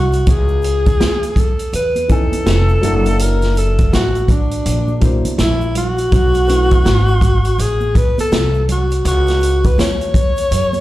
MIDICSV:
0, 0, Header, 1, 6, 480
1, 0, Start_track
1, 0, Key_signature, 4, "minor"
1, 0, Tempo, 731707
1, 178, Time_signature, 4, 2, 24, 8
1, 7088, End_track
2, 0, Start_track
2, 0, Title_t, "Alto saxophone"
2, 0, Program_c, 0, 65
2, 0, Note_on_c, 0, 66, 93
2, 194, Note_on_c, 0, 68, 96
2, 204, Note_off_c, 0, 66, 0
2, 910, Note_on_c, 0, 69, 77
2, 920, Note_off_c, 0, 68, 0
2, 1144, Note_off_c, 0, 69, 0
2, 1151, Note_on_c, 0, 71, 90
2, 1388, Note_on_c, 0, 69, 100
2, 1398, Note_off_c, 0, 71, 0
2, 2109, Note_on_c, 0, 70, 99
2, 2119, Note_off_c, 0, 69, 0
2, 2351, Note_on_c, 0, 69, 79
2, 2360, Note_off_c, 0, 70, 0
2, 2585, Note_off_c, 0, 69, 0
2, 2587, Note_on_c, 0, 66, 84
2, 2829, Note_on_c, 0, 62, 93
2, 2838, Note_off_c, 0, 66, 0
2, 3381, Note_off_c, 0, 62, 0
2, 3545, Note_on_c, 0, 64, 102
2, 3765, Note_off_c, 0, 64, 0
2, 3789, Note_on_c, 0, 66, 121
2, 4991, Note_on_c, 0, 68, 94
2, 5001, Note_off_c, 0, 66, 0
2, 5233, Note_on_c, 0, 71, 98
2, 5243, Note_off_c, 0, 68, 0
2, 5374, Note_off_c, 0, 71, 0
2, 5384, Note_on_c, 0, 69, 100
2, 5684, Note_off_c, 0, 69, 0
2, 5718, Note_on_c, 0, 66, 87
2, 5932, Note_off_c, 0, 66, 0
2, 5954, Note_on_c, 0, 66, 107
2, 6340, Note_on_c, 0, 71, 96
2, 6349, Note_off_c, 0, 66, 0
2, 6425, Note_off_c, 0, 71, 0
2, 6431, Note_on_c, 0, 73, 108
2, 7088, Note_off_c, 0, 73, 0
2, 7088, End_track
3, 0, Start_track
3, 0, Title_t, "Grand piano"
3, 0, Program_c, 1, 0
3, 1367, Note_on_c, 1, 52, 67
3, 1372, Note_on_c, 1, 59, 58
3, 1379, Note_on_c, 1, 61, 58
3, 1384, Note_on_c, 1, 63, 66
3, 1389, Note_on_c, 1, 80, 66
3, 1845, Note_on_c, 1, 54, 84
3, 1850, Note_on_c, 1, 58, 67
3, 1853, Note_off_c, 1, 52, 0
3, 1855, Note_off_c, 1, 59, 0
3, 1856, Note_on_c, 1, 62, 66
3, 1859, Note_off_c, 1, 61, 0
3, 1861, Note_off_c, 1, 63, 0
3, 1861, Note_on_c, 1, 64, 73
3, 1864, Note_off_c, 1, 80, 0
3, 1866, Note_on_c, 1, 66, 85
3, 2631, Note_off_c, 1, 54, 0
3, 2633, Note_off_c, 1, 58, 0
3, 2636, Note_off_c, 1, 62, 0
3, 2639, Note_off_c, 1, 64, 0
3, 2642, Note_off_c, 1, 66, 0
3, 3283, Note_on_c, 1, 54, 55
3, 3290, Note_on_c, 1, 58, 55
3, 3294, Note_on_c, 1, 62, 47
3, 3300, Note_on_c, 1, 64, 52
3, 3305, Note_on_c, 1, 72, 68
3, 3476, Note_off_c, 1, 54, 0
3, 3479, Note_off_c, 1, 58, 0
3, 3481, Note_off_c, 1, 62, 0
3, 3484, Note_off_c, 1, 64, 0
3, 3487, Note_off_c, 1, 72, 0
3, 4246, Note_on_c, 1, 57, 66
3, 4250, Note_on_c, 1, 59, 61
3, 4256, Note_on_c, 1, 61, 62
3, 4262, Note_on_c, 1, 64, 63
3, 4267, Note_on_c, 1, 66, 74
3, 4551, Note_off_c, 1, 57, 0
3, 4553, Note_off_c, 1, 59, 0
3, 4557, Note_off_c, 1, 61, 0
3, 4560, Note_off_c, 1, 64, 0
3, 4562, Note_off_c, 1, 66, 0
3, 7088, End_track
4, 0, Start_track
4, 0, Title_t, "Upright bass"
4, 0, Program_c, 2, 32
4, 0, Note_on_c, 2, 36, 97
4, 153, Note_off_c, 2, 36, 0
4, 177, Note_on_c, 2, 37, 104
4, 634, Note_off_c, 2, 37, 0
4, 657, Note_on_c, 2, 39, 76
4, 1113, Note_off_c, 2, 39, 0
4, 1135, Note_on_c, 2, 40, 79
4, 1505, Note_off_c, 2, 40, 0
4, 1615, Note_on_c, 2, 29, 77
4, 1844, Note_off_c, 2, 29, 0
4, 1853, Note_on_c, 2, 30, 89
4, 2550, Note_off_c, 2, 30, 0
4, 2576, Note_on_c, 2, 33, 72
4, 3033, Note_off_c, 2, 33, 0
4, 3055, Note_on_c, 2, 34, 100
4, 3426, Note_off_c, 2, 34, 0
4, 3534, Note_on_c, 2, 34, 91
4, 3992, Note_off_c, 2, 34, 0
4, 4016, Note_on_c, 2, 35, 103
4, 4473, Note_off_c, 2, 35, 0
4, 4496, Note_on_c, 2, 32, 90
4, 4953, Note_off_c, 2, 32, 0
4, 4975, Note_on_c, 2, 33, 92
4, 5346, Note_off_c, 2, 33, 0
4, 5457, Note_on_c, 2, 36, 84
4, 5914, Note_off_c, 2, 36, 0
4, 5936, Note_on_c, 2, 37, 106
4, 6393, Note_off_c, 2, 37, 0
4, 6415, Note_on_c, 2, 39, 86
4, 6873, Note_off_c, 2, 39, 0
4, 6896, Note_on_c, 2, 42, 89
4, 7088, Note_off_c, 2, 42, 0
4, 7088, End_track
5, 0, Start_track
5, 0, Title_t, "Muted upright bass strokes"
5, 1524, Note_on_c, 9, 29, 42
5, 1589, Note_off_c, 9, 29, 0
5, 3443, Note_on_c, 9, 29, 47
5, 3509, Note_off_c, 9, 29, 0
5, 5364, Note_on_c, 9, 29, 44
5, 5429, Note_off_c, 9, 29, 0
5, 7088, End_track
6, 0, Start_track
6, 0, Title_t, "Drums"
6, 79, Note_on_c, 9, 82, 49
6, 88, Note_on_c, 9, 42, 41
6, 145, Note_off_c, 9, 82, 0
6, 153, Note_off_c, 9, 42, 0
6, 175, Note_on_c, 9, 42, 93
6, 176, Note_on_c, 9, 82, 64
6, 178, Note_on_c, 9, 36, 117
6, 241, Note_off_c, 9, 42, 0
6, 241, Note_off_c, 9, 82, 0
6, 243, Note_off_c, 9, 36, 0
6, 316, Note_on_c, 9, 82, 50
6, 382, Note_off_c, 9, 82, 0
6, 408, Note_on_c, 9, 82, 53
6, 421, Note_on_c, 9, 42, 74
6, 473, Note_off_c, 9, 82, 0
6, 487, Note_off_c, 9, 42, 0
6, 565, Note_on_c, 9, 42, 50
6, 567, Note_on_c, 9, 36, 89
6, 567, Note_on_c, 9, 82, 41
6, 631, Note_off_c, 9, 42, 0
6, 633, Note_off_c, 9, 36, 0
6, 633, Note_off_c, 9, 82, 0
6, 658, Note_on_c, 9, 63, 42
6, 658, Note_on_c, 9, 82, 64
6, 660, Note_on_c, 9, 38, 113
6, 661, Note_on_c, 9, 42, 85
6, 724, Note_off_c, 9, 63, 0
6, 724, Note_off_c, 9, 82, 0
6, 725, Note_off_c, 9, 38, 0
6, 726, Note_off_c, 9, 42, 0
6, 806, Note_on_c, 9, 42, 33
6, 810, Note_on_c, 9, 82, 48
6, 871, Note_off_c, 9, 42, 0
6, 876, Note_off_c, 9, 82, 0
6, 892, Note_on_c, 9, 36, 84
6, 896, Note_on_c, 9, 42, 62
6, 899, Note_on_c, 9, 64, 62
6, 899, Note_on_c, 9, 82, 46
6, 958, Note_off_c, 9, 36, 0
6, 961, Note_off_c, 9, 42, 0
6, 965, Note_off_c, 9, 64, 0
6, 965, Note_off_c, 9, 82, 0
6, 1044, Note_on_c, 9, 42, 43
6, 1044, Note_on_c, 9, 82, 39
6, 1110, Note_off_c, 9, 42, 0
6, 1110, Note_off_c, 9, 82, 0
6, 1134, Note_on_c, 9, 82, 54
6, 1137, Note_on_c, 9, 42, 81
6, 1199, Note_off_c, 9, 82, 0
6, 1203, Note_off_c, 9, 42, 0
6, 1283, Note_on_c, 9, 63, 51
6, 1283, Note_on_c, 9, 82, 43
6, 1285, Note_on_c, 9, 42, 34
6, 1348, Note_off_c, 9, 63, 0
6, 1348, Note_off_c, 9, 82, 0
6, 1350, Note_off_c, 9, 42, 0
6, 1373, Note_on_c, 9, 42, 61
6, 1376, Note_on_c, 9, 36, 88
6, 1380, Note_on_c, 9, 82, 49
6, 1439, Note_off_c, 9, 42, 0
6, 1441, Note_off_c, 9, 36, 0
6, 1446, Note_off_c, 9, 82, 0
6, 1526, Note_on_c, 9, 63, 58
6, 1526, Note_on_c, 9, 82, 43
6, 1527, Note_on_c, 9, 42, 45
6, 1592, Note_off_c, 9, 42, 0
6, 1592, Note_off_c, 9, 63, 0
6, 1592, Note_off_c, 9, 82, 0
6, 1616, Note_on_c, 9, 38, 102
6, 1617, Note_on_c, 9, 42, 79
6, 1617, Note_on_c, 9, 82, 70
6, 1682, Note_off_c, 9, 38, 0
6, 1683, Note_off_c, 9, 42, 0
6, 1683, Note_off_c, 9, 82, 0
6, 1764, Note_on_c, 9, 82, 45
6, 1829, Note_off_c, 9, 82, 0
6, 1856, Note_on_c, 9, 42, 70
6, 1856, Note_on_c, 9, 64, 75
6, 1856, Note_on_c, 9, 82, 49
6, 1922, Note_off_c, 9, 42, 0
6, 1922, Note_off_c, 9, 64, 0
6, 1922, Note_off_c, 9, 82, 0
6, 2000, Note_on_c, 9, 82, 41
6, 2006, Note_on_c, 9, 42, 47
6, 2066, Note_off_c, 9, 82, 0
6, 2072, Note_off_c, 9, 42, 0
6, 2095, Note_on_c, 9, 42, 102
6, 2097, Note_on_c, 9, 82, 65
6, 2161, Note_off_c, 9, 42, 0
6, 2163, Note_off_c, 9, 82, 0
6, 2239, Note_on_c, 9, 82, 44
6, 2244, Note_on_c, 9, 42, 34
6, 2251, Note_on_c, 9, 38, 31
6, 2305, Note_off_c, 9, 82, 0
6, 2310, Note_off_c, 9, 42, 0
6, 2316, Note_off_c, 9, 38, 0
6, 2330, Note_on_c, 9, 82, 53
6, 2342, Note_on_c, 9, 42, 61
6, 2395, Note_off_c, 9, 82, 0
6, 2408, Note_off_c, 9, 42, 0
6, 2482, Note_on_c, 9, 42, 47
6, 2486, Note_on_c, 9, 36, 88
6, 2487, Note_on_c, 9, 82, 36
6, 2548, Note_off_c, 9, 42, 0
6, 2552, Note_off_c, 9, 36, 0
6, 2552, Note_off_c, 9, 82, 0
6, 2580, Note_on_c, 9, 38, 103
6, 2580, Note_on_c, 9, 63, 40
6, 2580, Note_on_c, 9, 82, 52
6, 2581, Note_on_c, 9, 42, 88
6, 2645, Note_off_c, 9, 38, 0
6, 2645, Note_off_c, 9, 63, 0
6, 2645, Note_off_c, 9, 82, 0
6, 2646, Note_off_c, 9, 42, 0
6, 2723, Note_on_c, 9, 42, 28
6, 2729, Note_on_c, 9, 82, 44
6, 2788, Note_off_c, 9, 42, 0
6, 2795, Note_off_c, 9, 82, 0
6, 2810, Note_on_c, 9, 36, 84
6, 2811, Note_on_c, 9, 42, 73
6, 2815, Note_on_c, 9, 64, 70
6, 2815, Note_on_c, 9, 82, 46
6, 2876, Note_off_c, 9, 36, 0
6, 2877, Note_off_c, 9, 42, 0
6, 2881, Note_off_c, 9, 64, 0
6, 2881, Note_off_c, 9, 82, 0
6, 2961, Note_on_c, 9, 42, 44
6, 2961, Note_on_c, 9, 82, 38
6, 3027, Note_off_c, 9, 42, 0
6, 3027, Note_off_c, 9, 82, 0
6, 3055, Note_on_c, 9, 42, 88
6, 3057, Note_on_c, 9, 82, 52
6, 3120, Note_off_c, 9, 42, 0
6, 3123, Note_off_c, 9, 82, 0
6, 3200, Note_on_c, 9, 63, 57
6, 3200, Note_on_c, 9, 82, 43
6, 3266, Note_off_c, 9, 63, 0
6, 3266, Note_off_c, 9, 82, 0
6, 3289, Note_on_c, 9, 42, 73
6, 3293, Note_on_c, 9, 36, 95
6, 3296, Note_on_c, 9, 82, 44
6, 3354, Note_off_c, 9, 42, 0
6, 3359, Note_off_c, 9, 36, 0
6, 3361, Note_off_c, 9, 82, 0
6, 3443, Note_on_c, 9, 42, 52
6, 3444, Note_on_c, 9, 63, 63
6, 3444, Note_on_c, 9, 82, 46
6, 3509, Note_off_c, 9, 42, 0
6, 3509, Note_off_c, 9, 63, 0
6, 3509, Note_off_c, 9, 82, 0
6, 3532, Note_on_c, 9, 38, 93
6, 3533, Note_on_c, 9, 42, 84
6, 3534, Note_on_c, 9, 82, 64
6, 3597, Note_off_c, 9, 38, 0
6, 3598, Note_off_c, 9, 42, 0
6, 3599, Note_off_c, 9, 82, 0
6, 3681, Note_on_c, 9, 82, 46
6, 3746, Note_off_c, 9, 82, 0
6, 3773, Note_on_c, 9, 42, 82
6, 3775, Note_on_c, 9, 64, 73
6, 3775, Note_on_c, 9, 82, 48
6, 3839, Note_off_c, 9, 42, 0
6, 3841, Note_off_c, 9, 64, 0
6, 3841, Note_off_c, 9, 82, 0
6, 3920, Note_on_c, 9, 82, 42
6, 3925, Note_on_c, 9, 42, 38
6, 3985, Note_off_c, 9, 82, 0
6, 3990, Note_off_c, 9, 42, 0
6, 4014, Note_on_c, 9, 42, 83
6, 4015, Note_on_c, 9, 82, 63
6, 4017, Note_on_c, 9, 36, 107
6, 4080, Note_off_c, 9, 42, 0
6, 4081, Note_off_c, 9, 82, 0
6, 4082, Note_off_c, 9, 36, 0
6, 4158, Note_on_c, 9, 82, 48
6, 4164, Note_on_c, 9, 42, 34
6, 4224, Note_off_c, 9, 82, 0
6, 4229, Note_off_c, 9, 42, 0
6, 4248, Note_on_c, 9, 82, 50
6, 4260, Note_on_c, 9, 42, 73
6, 4314, Note_off_c, 9, 82, 0
6, 4325, Note_off_c, 9, 42, 0
6, 4402, Note_on_c, 9, 42, 46
6, 4402, Note_on_c, 9, 82, 38
6, 4406, Note_on_c, 9, 36, 88
6, 4467, Note_off_c, 9, 82, 0
6, 4468, Note_off_c, 9, 42, 0
6, 4472, Note_off_c, 9, 36, 0
6, 4497, Note_on_c, 9, 63, 39
6, 4497, Note_on_c, 9, 82, 60
6, 4499, Note_on_c, 9, 38, 99
6, 4500, Note_on_c, 9, 42, 82
6, 4563, Note_off_c, 9, 63, 0
6, 4563, Note_off_c, 9, 82, 0
6, 4564, Note_off_c, 9, 38, 0
6, 4565, Note_off_c, 9, 42, 0
6, 4645, Note_on_c, 9, 82, 46
6, 4710, Note_off_c, 9, 82, 0
6, 4731, Note_on_c, 9, 64, 60
6, 4731, Note_on_c, 9, 82, 46
6, 4732, Note_on_c, 9, 36, 92
6, 4736, Note_on_c, 9, 42, 68
6, 4797, Note_off_c, 9, 64, 0
6, 4797, Note_off_c, 9, 82, 0
6, 4798, Note_off_c, 9, 36, 0
6, 4801, Note_off_c, 9, 42, 0
6, 4882, Note_on_c, 9, 82, 40
6, 4885, Note_on_c, 9, 42, 46
6, 4948, Note_off_c, 9, 82, 0
6, 4951, Note_off_c, 9, 42, 0
6, 4976, Note_on_c, 9, 82, 56
6, 4981, Note_on_c, 9, 42, 87
6, 5041, Note_off_c, 9, 82, 0
6, 5047, Note_off_c, 9, 42, 0
6, 5119, Note_on_c, 9, 63, 60
6, 5119, Note_on_c, 9, 82, 38
6, 5185, Note_off_c, 9, 63, 0
6, 5185, Note_off_c, 9, 82, 0
6, 5217, Note_on_c, 9, 36, 94
6, 5217, Note_on_c, 9, 42, 67
6, 5219, Note_on_c, 9, 82, 49
6, 5283, Note_off_c, 9, 36, 0
6, 5283, Note_off_c, 9, 42, 0
6, 5284, Note_off_c, 9, 82, 0
6, 5367, Note_on_c, 9, 63, 62
6, 5367, Note_on_c, 9, 82, 42
6, 5372, Note_on_c, 9, 42, 50
6, 5432, Note_off_c, 9, 63, 0
6, 5432, Note_off_c, 9, 82, 0
6, 5438, Note_off_c, 9, 42, 0
6, 5454, Note_on_c, 9, 82, 68
6, 5461, Note_on_c, 9, 38, 115
6, 5461, Note_on_c, 9, 42, 89
6, 5520, Note_off_c, 9, 82, 0
6, 5526, Note_off_c, 9, 38, 0
6, 5527, Note_off_c, 9, 42, 0
6, 5603, Note_on_c, 9, 82, 43
6, 5668, Note_off_c, 9, 82, 0
6, 5698, Note_on_c, 9, 64, 67
6, 5698, Note_on_c, 9, 82, 52
6, 5699, Note_on_c, 9, 42, 81
6, 5764, Note_off_c, 9, 42, 0
6, 5764, Note_off_c, 9, 64, 0
6, 5764, Note_off_c, 9, 82, 0
6, 5842, Note_on_c, 9, 82, 38
6, 5849, Note_on_c, 9, 42, 50
6, 5908, Note_off_c, 9, 82, 0
6, 5914, Note_off_c, 9, 42, 0
6, 5937, Note_on_c, 9, 82, 62
6, 5938, Note_on_c, 9, 42, 92
6, 6003, Note_off_c, 9, 82, 0
6, 6004, Note_off_c, 9, 42, 0
6, 6078, Note_on_c, 9, 82, 53
6, 6088, Note_on_c, 9, 42, 35
6, 6094, Note_on_c, 9, 38, 33
6, 6143, Note_off_c, 9, 82, 0
6, 6153, Note_off_c, 9, 42, 0
6, 6160, Note_off_c, 9, 38, 0
6, 6166, Note_on_c, 9, 82, 53
6, 6185, Note_on_c, 9, 42, 61
6, 6232, Note_off_c, 9, 82, 0
6, 6251, Note_off_c, 9, 42, 0
6, 6321, Note_on_c, 9, 82, 37
6, 6326, Note_on_c, 9, 42, 48
6, 6328, Note_on_c, 9, 36, 83
6, 6387, Note_off_c, 9, 82, 0
6, 6392, Note_off_c, 9, 42, 0
6, 6394, Note_off_c, 9, 36, 0
6, 6417, Note_on_c, 9, 63, 40
6, 6417, Note_on_c, 9, 64, 65
6, 6417, Note_on_c, 9, 82, 52
6, 6423, Note_on_c, 9, 38, 112
6, 6424, Note_on_c, 9, 42, 90
6, 6483, Note_off_c, 9, 63, 0
6, 6483, Note_off_c, 9, 64, 0
6, 6483, Note_off_c, 9, 82, 0
6, 6488, Note_off_c, 9, 38, 0
6, 6489, Note_off_c, 9, 42, 0
6, 6565, Note_on_c, 9, 82, 48
6, 6567, Note_on_c, 9, 42, 33
6, 6631, Note_off_c, 9, 82, 0
6, 6632, Note_off_c, 9, 42, 0
6, 6653, Note_on_c, 9, 36, 89
6, 6654, Note_on_c, 9, 64, 59
6, 6654, Note_on_c, 9, 82, 50
6, 6658, Note_on_c, 9, 42, 67
6, 6719, Note_off_c, 9, 36, 0
6, 6720, Note_off_c, 9, 64, 0
6, 6720, Note_off_c, 9, 82, 0
6, 6723, Note_off_c, 9, 42, 0
6, 6798, Note_on_c, 9, 82, 42
6, 6807, Note_on_c, 9, 42, 44
6, 6863, Note_off_c, 9, 82, 0
6, 6873, Note_off_c, 9, 42, 0
6, 6893, Note_on_c, 9, 82, 56
6, 6899, Note_on_c, 9, 42, 97
6, 6958, Note_off_c, 9, 82, 0
6, 6965, Note_off_c, 9, 42, 0
6, 7038, Note_on_c, 9, 63, 62
6, 7038, Note_on_c, 9, 82, 37
6, 7045, Note_on_c, 9, 42, 34
6, 7088, Note_off_c, 9, 42, 0
6, 7088, Note_off_c, 9, 63, 0
6, 7088, Note_off_c, 9, 82, 0
6, 7088, End_track
0, 0, End_of_file